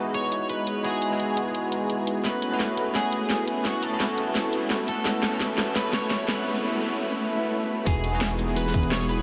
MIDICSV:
0, 0, Header, 1, 7, 480
1, 0, Start_track
1, 0, Key_signature, 4, "major"
1, 0, Tempo, 350877
1, 1157, Time_signature, 4, 2, 24, 8
1, 12618, End_track
2, 0, Start_track
2, 0, Title_t, "Clean electric guitar"
2, 0, Program_c, 0, 27
2, 0, Note_on_c, 0, 71, 108
2, 193, Note_off_c, 0, 71, 0
2, 198, Note_on_c, 0, 73, 111
2, 644, Note_off_c, 0, 73, 0
2, 679, Note_on_c, 0, 71, 103
2, 1125, Note_off_c, 0, 71, 0
2, 1157, Note_on_c, 0, 68, 102
2, 2782, Note_off_c, 0, 68, 0
2, 3077, Note_on_c, 0, 71, 105
2, 4032, Note_off_c, 0, 71, 0
2, 4037, Note_on_c, 0, 68, 95
2, 4707, Note_off_c, 0, 68, 0
2, 4999, Note_on_c, 0, 66, 96
2, 5240, Note_off_c, 0, 66, 0
2, 5240, Note_on_c, 0, 69, 86
2, 6198, Note_off_c, 0, 69, 0
2, 6681, Note_on_c, 0, 69, 99
2, 7872, Note_off_c, 0, 69, 0
2, 7878, Note_on_c, 0, 71, 111
2, 8112, Note_off_c, 0, 71, 0
2, 8118, Note_on_c, 0, 73, 117
2, 8592, Note_off_c, 0, 73, 0
2, 8598, Note_on_c, 0, 71, 107
2, 8821, Note_off_c, 0, 71, 0
2, 10762, Note_on_c, 0, 68, 90
2, 11429, Note_off_c, 0, 68, 0
2, 11718, Note_on_c, 0, 71, 105
2, 12191, Note_off_c, 0, 71, 0
2, 12197, Note_on_c, 0, 73, 115
2, 12420, Note_off_c, 0, 73, 0
2, 12437, Note_on_c, 0, 71, 98
2, 12618, Note_off_c, 0, 71, 0
2, 12618, End_track
3, 0, Start_track
3, 0, Title_t, "Analog synth pad"
3, 0, Program_c, 1, 89
3, 0, Note_on_c, 1, 56, 78
3, 0, Note_on_c, 1, 75, 85
3, 3020, Note_off_c, 1, 75, 0
3, 3021, Note_off_c, 1, 56, 0
3, 3075, Note_on_c, 1, 57, 78
3, 3076, Note_on_c, 1, 64, 72
3, 3077, Note_on_c, 1, 71, 85
3, 10701, Note_off_c, 1, 57, 0
3, 10702, Note_off_c, 1, 64, 0
3, 10702, Note_off_c, 1, 71, 0
3, 10754, Note_on_c, 1, 68, 79
3, 10754, Note_on_c, 1, 87, 86
3, 12618, Note_off_c, 1, 68, 0
3, 12618, Note_off_c, 1, 87, 0
3, 12618, End_track
4, 0, Start_track
4, 0, Title_t, "Tine electric piano"
4, 0, Program_c, 2, 4
4, 0, Control_c, 2, 64, 127
4, 0, Note_on_c, 2, 56, 77
4, 0, Note_on_c, 2, 59, 70
4, 0, Note_on_c, 2, 63, 71
4, 0, Note_on_c, 2, 64, 68
4, 0, Note_on_c, 2, 66, 106
4, 2, Note_off_c, 2, 66, 0
4, 2, Note_on_c, 2, 66, 86
4, 1108, Note_off_c, 2, 56, 0
4, 1119, Note_off_c, 2, 59, 0
4, 1130, Note_off_c, 2, 63, 0
4, 1133, Note_on_c, 2, 56, 97
4, 1141, Note_off_c, 2, 64, 0
4, 1144, Note_on_c, 2, 59, 90
4, 1153, Note_off_c, 2, 66, 0
4, 1155, Note_on_c, 2, 63, 93
4, 1166, Note_on_c, 2, 64, 89
4, 1178, Note_on_c, 2, 66, 112
4, 1483, Note_off_c, 2, 56, 0
4, 1489, Note_off_c, 2, 59, 0
4, 1494, Note_off_c, 2, 63, 0
4, 1500, Note_off_c, 2, 64, 0
4, 1501, Note_on_c, 2, 56, 93
4, 1505, Note_off_c, 2, 66, 0
4, 1512, Note_on_c, 2, 59, 86
4, 1525, Note_on_c, 2, 63, 90
4, 1534, Note_on_c, 2, 64, 87
4, 1546, Note_on_c, 2, 66, 105
4, 1838, Note_off_c, 2, 56, 0
4, 1843, Note_off_c, 2, 59, 0
4, 1850, Note_off_c, 2, 63, 0
4, 1854, Note_on_c, 2, 56, 74
4, 1855, Note_off_c, 2, 64, 0
4, 1860, Note_off_c, 2, 66, 0
4, 1865, Note_on_c, 2, 59, 71
4, 1876, Note_on_c, 2, 63, 71
4, 1887, Note_on_c, 2, 64, 69
4, 1897, Note_on_c, 2, 66, 84
4, 2295, Note_off_c, 2, 56, 0
4, 2312, Note_on_c, 2, 56, 80
4, 2318, Note_off_c, 2, 59, 0
4, 2334, Note_off_c, 2, 63, 0
4, 2334, Note_on_c, 2, 59, 73
4, 2340, Note_off_c, 2, 64, 0
4, 2345, Note_off_c, 2, 66, 0
4, 2356, Note_on_c, 2, 63, 71
4, 2378, Note_on_c, 2, 64, 74
4, 2401, Note_on_c, 2, 66, 87
4, 3028, Note_off_c, 2, 56, 0
4, 3039, Note_off_c, 2, 59, 0
4, 3050, Note_off_c, 2, 63, 0
4, 3054, Note_on_c, 2, 57, 97
4, 3061, Note_off_c, 2, 64, 0
4, 3065, Note_on_c, 2, 59, 89
4, 3072, Note_off_c, 2, 66, 0
4, 3076, Note_on_c, 2, 61, 90
4, 3087, Note_on_c, 2, 64, 91
4, 3094, Control_c, 2, 64, 0
4, 3099, Note_on_c, 2, 66, 106
4, 3311, Control_c, 2, 64, 127
4, 3403, Note_off_c, 2, 57, 0
4, 3409, Note_off_c, 2, 59, 0
4, 3415, Note_off_c, 2, 61, 0
4, 3420, Note_off_c, 2, 64, 0
4, 3424, Note_on_c, 2, 57, 94
4, 3426, Note_off_c, 2, 66, 0
4, 3434, Note_on_c, 2, 59, 86
4, 3445, Note_on_c, 2, 61, 89
4, 3456, Note_on_c, 2, 64, 87
4, 3468, Note_on_c, 2, 66, 108
4, 3736, Note_off_c, 2, 57, 0
4, 3753, Note_on_c, 2, 57, 77
4, 3758, Note_off_c, 2, 59, 0
4, 3770, Note_off_c, 2, 61, 0
4, 3775, Note_on_c, 2, 59, 72
4, 3776, Note_off_c, 2, 64, 0
4, 3781, Note_off_c, 2, 66, 0
4, 3797, Note_on_c, 2, 61, 70
4, 3819, Note_on_c, 2, 64, 71
4, 3841, Note_on_c, 2, 66, 83
4, 4948, Note_off_c, 2, 57, 0
4, 4959, Note_off_c, 2, 59, 0
4, 4970, Note_off_c, 2, 61, 0
4, 4974, Note_on_c, 2, 57, 100
4, 4981, Note_off_c, 2, 64, 0
4, 4984, Note_on_c, 2, 59, 91
4, 4992, Note_off_c, 2, 66, 0
4, 4996, Note_on_c, 2, 61, 91
4, 5006, Note_on_c, 2, 64, 90
4, 5018, Note_on_c, 2, 66, 107
4, 5323, Note_off_c, 2, 57, 0
4, 5328, Note_off_c, 2, 59, 0
4, 5334, Note_off_c, 2, 61, 0
4, 5339, Note_off_c, 2, 64, 0
4, 5342, Note_on_c, 2, 57, 97
4, 5345, Note_off_c, 2, 66, 0
4, 5354, Note_on_c, 2, 59, 89
4, 5364, Note_on_c, 2, 61, 91
4, 5374, Note_on_c, 2, 64, 89
4, 5385, Note_on_c, 2, 66, 106
4, 5653, Note_off_c, 2, 57, 0
4, 5670, Note_on_c, 2, 57, 76
4, 5676, Note_off_c, 2, 59, 0
4, 5689, Note_off_c, 2, 61, 0
4, 5692, Note_on_c, 2, 59, 70
4, 5694, Note_off_c, 2, 64, 0
4, 5700, Note_off_c, 2, 66, 0
4, 5713, Note_on_c, 2, 61, 69
4, 5736, Note_on_c, 2, 64, 73
4, 5757, Note_on_c, 2, 66, 87
4, 6867, Note_off_c, 2, 57, 0
4, 6878, Note_off_c, 2, 59, 0
4, 6888, Note_off_c, 2, 61, 0
4, 6892, Note_on_c, 2, 57, 102
4, 6900, Note_off_c, 2, 64, 0
4, 6904, Note_on_c, 2, 59, 92
4, 6910, Note_off_c, 2, 66, 0
4, 6914, Note_on_c, 2, 61, 93
4, 6925, Note_on_c, 2, 64, 93
4, 6937, Note_on_c, 2, 66, 113
4, 7242, Note_off_c, 2, 57, 0
4, 7248, Note_off_c, 2, 59, 0
4, 7253, Note_off_c, 2, 61, 0
4, 7259, Note_off_c, 2, 64, 0
4, 7262, Note_on_c, 2, 57, 99
4, 7265, Note_off_c, 2, 66, 0
4, 7274, Note_on_c, 2, 59, 90
4, 7284, Note_on_c, 2, 61, 90
4, 7295, Note_on_c, 2, 64, 88
4, 7306, Note_on_c, 2, 66, 107
4, 7576, Note_off_c, 2, 57, 0
4, 7593, Note_on_c, 2, 57, 79
4, 7598, Note_off_c, 2, 59, 0
4, 7610, Note_off_c, 2, 61, 0
4, 7614, Note_on_c, 2, 59, 74
4, 7615, Note_off_c, 2, 64, 0
4, 7620, Note_off_c, 2, 66, 0
4, 7635, Note_on_c, 2, 61, 73
4, 7658, Note_on_c, 2, 64, 73
4, 7680, Note_on_c, 2, 66, 85
4, 8788, Note_off_c, 2, 57, 0
4, 8799, Note_off_c, 2, 59, 0
4, 8809, Note_off_c, 2, 61, 0
4, 8821, Note_off_c, 2, 64, 0
4, 8832, Note_off_c, 2, 66, 0
4, 10732, Note_on_c, 2, 56, 101
4, 10744, Note_on_c, 2, 59, 95
4, 10754, Note_on_c, 2, 63, 89
4, 10765, Note_on_c, 2, 64, 94
4, 10775, Control_c, 2, 64, 0
4, 10775, Note_on_c, 2, 66, 111
4, 10983, Control_c, 2, 64, 127
4, 11083, Note_off_c, 2, 56, 0
4, 11088, Note_off_c, 2, 59, 0
4, 11093, Note_off_c, 2, 63, 0
4, 11099, Note_off_c, 2, 64, 0
4, 11101, Note_on_c, 2, 56, 96
4, 11104, Note_off_c, 2, 66, 0
4, 11112, Note_on_c, 2, 59, 91
4, 11122, Note_on_c, 2, 63, 88
4, 11133, Note_on_c, 2, 64, 88
4, 11145, Note_on_c, 2, 66, 109
4, 11414, Note_off_c, 2, 56, 0
4, 11430, Note_on_c, 2, 56, 78
4, 11436, Note_off_c, 2, 59, 0
4, 11449, Note_off_c, 2, 63, 0
4, 11452, Note_on_c, 2, 59, 71
4, 11454, Note_off_c, 2, 64, 0
4, 11460, Note_off_c, 2, 66, 0
4, 11476, Note_on_c, 2, 63, 72
4, 11497, Note_on_c, 2, 64, 72
4, 11519, Note_on_c, 2, 66, 86
4, 12618, Note_off_c, 2, 56, 0
4, 12618, Note_off_c, 2, 59, 0
4, 12618, Note_off_c, 2, 63, 0
4, 12618, Note_off_c, 2, 64, 0
4, 12618, Note_off_c, 2, 66, 0
4, 12618, End_track
5, 0, Start_track
5, 0, Title_t, "Detuned saw bass"
5, 0, Program_c, 3, 39
5, 10756, Note_on_c, 3, 28, 102
5, 12618, Note_off_c, 3, 28, 0
5, 12618, End_track
6, 0, Start_track
6, 0, Title_t, "Swell"
6, 0, Program_c, 4, 103
6, 9796, Note_on_c, 4, 60, 79
6, 10757, Note_off_c, 4, 60, 0
6, 12618, End_track
7, 0, Start_track
7, 0, Title_t, "Drums"
7, 196, Note_on_c, 9, 42, 80
7, 333, Note_off_c, 9, 42, 0
7, 435, Note_on_c, 9, 42, 92
7, 572, Note_off_c, 9, 42, 0
7, 675, Note_on_c, 9, 42, 82
7, 812, Note_off_c, 9, 42, 0
7, 916, Note_on_c, 9, 42, 97
7, 1053, Note_off_c, 9, 42, 0
7, 1156, Note_on_c, 9, 42, 76
7, 1292, Note_off_c, 9, 42, 0
7, 1396, Note_on_c, 9, 42, 93
7, 1533, Note_off_c, 9, 42, 0
7, 1636, Note_on_c, 9, 42, 80
7, 1773, Note_off_c, 9, 42, 0
7, 1876, Note_on_c, 9, 42, 91
7, 2012, Note_off_c, 9, 42, 0
7, 2115, Note_on_c, 9, 42, 77
7, 2252, Note_off_c, 9, 42, 0
7, 2354, Note_on_c, 9, 42, 91
7, 2491, Note_off_c, 9, 42, 0
7, 2594, Note_on_c, 9, 42, 79
7, 2731, Note_off_c, 9, 42, 0
7, 2834, Note_on_c, 9, 42, 93
7, 2971, Note_off_c, 9, 42, 0
7, 3074, Note_on_c, 9, 38, 47
7, 3074, Note_on_c, 9, 42, 76
7, 3211, Note_off_c, 9, 38, 0
7, 3211, Note_off_c, 9, 42, 0
7, 3314, Note_on_c, 9, 42, 90
7, 3451, Note_off_c, 9, 42, 0
7, 3554, Note_on_c, 9, 38, 52
7, 3554, Note_on_c, 9, 42, 79
7, 3691, Note_off_c, 9, 38, 0
7, 3691, Note_off_c, 9, 42, 0
7, 3794, Note_on_c, 9, 42, 91
7, 3931, Note_off_c, 9, 42, 0
7, 4034, Note_on_c, 9, 38, 53
7, 4034, Note_on_c, 9, 42, 76
7, 4171, Note_off_c, 9, 38, 0
7, 4171, Note_off_c, 9, 42, 0
7, 4274, Note_on_c, 9, 42, 87
7, 4410, Note_off_c, 9, 42, 0
7, 4514, Note_on_c, 9, 38, 56
7, 4514, Note_on_c, 9, 42, 77
7, 4651, Note_off_c, 9, 38, 0
7, 4651, Note_off_c, 9, 42, 0
7, 4755, Note_on_c, 9, 42, 89
7, 4891, Note_off_c, 9, 42, 0
7, 4994, Note_on_c, 9, 38, 61
7, 4994, Note_on_c, 9, 42, 74
7, 5131, Note_off_c, 9, 38, 0
7, 5131, Note_off_c, 9, 42, 0
7, 5235, Note_on_c, 9, 42, 92
7, 5372, Note_off_c, 9, 42, 0
7, 5475, Note_on_c, 9, 38, 64
7, 5475, Note_on_c, 9, 42, 77
7, 5611, Note_off_c, 9, 38, 0
7, 5611, Note_off_c, 9, 42, 0
7, 5714, Note_on_c, 9, 42, 92
7, 5851, Note_off_c, 9, 42, 0
7, 5956, Note_on_c, 9, 38, 66
7, 5956, Note_on_c, 9, 42, 74
7, 6092, Note_off_c, 9, 38, 0
7, 6092, Note_off_c, 9, 42, 0
7, 6195, Note_on_c, 9, 42, 89
7, 6332, Note_off_c, 9, 42, 0
7, 6435, Note_on_c, 9, 38, 71
7, 6435, Note_on_c, 9, 42, 77
7, 6572, Note_off_c, 9, 38, 0
7, 6572, Note_off_c, 9, 42, 0
7, 6674, Note_on_c, 9, 42, 89
7, 6811, Note_off_c, 9, 42, 0
7, 6914, Note_on_c, 9, 38, 75
7, 6914, Note_on_c, 9, 42, 80
7, 7051, Note_off_c, 9, 38, 0
7, 7051, Note_off_c, 9, 42, 0
7, 7154, Note_on_c, 9, 38, 78
7, 7154, Note_on_c, 9, 42, 97
7, 7291, Note_off_c, 9, 38, 0
7, 7291, Note_off_c, 9, 42, 0
7, 7395, Note_on_c, 9, 38, 79
7, 7395, Note_on_c, 9, 42, 79
7, 7532, Note_off_c, 9, 38, 0
7, 7532, Note_off_c, 9, 42, 0
7, 7634, Note_on_c, 9, 38, 81
7, 7634, Note_on_c, 9, 42, 94
7, 7771, Note_off_c, 9, 38, 0
7, 7771, Note_off_c, 9, 42, 0
7, 7874, Note_on_c, 9, 38, 83
7, 7874, Note_on_c, 9, 42, 79
7, 8011, Note_off_c, 9, 38, 0
7, 8011, Note_off_c, 9, 42, 0
7, 8114, Note_on_c, 9, 38, 85
7, 8114, Note_on_c, 9, 42, 92
7, 8251, Note_off_c, 9, 38, 0
7, 8251, Note_off_c, 9, 42, 0
7, 8354, Note_on_c, 9, 38, 90
7, 8354, Note_on_c, 9, 42, 76
7, 8491, Note_off_c, 9, 38, 0
7, 8491, Note_off_c, 9, 42, 0
7, 8596, Note_on_c, 9, 38, 89
7, 8596, Note_on_c, 9, 42, 92
7, 8732, Note_off_c, 9, 38, 0
7, 8732, Note_off_c, 9, 42, 0
7, 10756, Note_on_c, 9, 42, 95
7, 10757, Note_on_c, 9, 36, 121
7, 10760, Note_off_c, 9, 42, 0
7, 10760, Note_on_c, 9, 42, 95
7, 10894, Note_off_c, 9, 36, 0
7, 10897, Note_off_c, 9, 42, 0
7, 10996, Note_on_c, 9, 42, 72
7, 10999, Note_off_c, 9, 42, 0
7, 10999, Note_on_c, 9, 42, 68
7, 11123, Note_off_c, 9, 42, 0
7, 11123, Note_on_c, 9, 42, 46
7, 11224, Note_off_c, 9, 42, 0
7, 11224, Note_on_c, 9, 42, 88
7, 11227, Note_on_c, 9, 38, 114
7, 11236, Note_off_c, 9, 38, 0
7, 11236, Note_off_c, 9, 42, 0
7, 11236, Note_on_c, 9, 38, 125
7, 11236, Note_on_c, 9, 42, 97
7, 11372, Note_off_c, 9, 38, 0
7, 11372, Note_off_c, 9, 42, 0
7, 11471, Note_on_c, 9, 42, 66
7, 11476, Note_off_c, 9, 42, 0
7, 11476, Note_on_c, 9, 42, 71
7, 11599, Note_off_c, 9, 42, 0
7, 11599, Note_on_c, 9, 42, 41
7, 11715, Note_off_c, 9, 42, 0
7, 11715, Note_on_c, 9, 42, 98
7, 11725, Note_off_c, 9, 42, 0
7, 11725, Note_on_c, 9, 42, 94
7, 11854, Note_on_c, 9, 38, 38
7, 11862, Note_off_c, 9, 42, 0
7, 11953, Note_on_c, 9, 42, 72
7, 11956, Note_off_c, 9, 42, 0
7, 11956, Note_on_c, 9, 42, 68
7, 11957, Note_on_c, 9, 36, 102
7, 11991, Note_off_c, 9, 38, 0
7, 12085, Note_off_c, 9, 42, 0
7, 12085, Note_on_c, 9, 42, 38
7, 12094, Note_off_c, 9, 36, 0
7, 12196, Note_off_c, 9, 42, 0
7, 12196, Note_on_c, 9, 38, 123
7, 12196, Note_on_c, 9, 42, 100
7, 12197, Note_off_c, 9, 38, 0
7, 12197, Note_on_c, 9, 38, 127
7, 12199, Note_off_c, 9, 42, 0
7, 12199, Note_on_c, 9, 42, 84
7, 12321, Note_off_c, 9, 38, 0
7, 12321, Note_on_c, 9, 38, 45
7, 12325, Note_off_c, 9, 42, 0
7, 12325, Note_on_c, 9, 42, 40
7, 12437, Note_off_c, 9, 42, 0
7, 12437, Note_on_c, 9, 42, 70
7, 12439, Note_off_c, 9, 42, 0
7, 12439, Note_on_c, 9, 42, 76
7, 12458, Note_off_c, 9, 38, 0
7, 12576, Note_off_c, 9, 42, 0
7, 12618, End_track
0, 0, End_of_file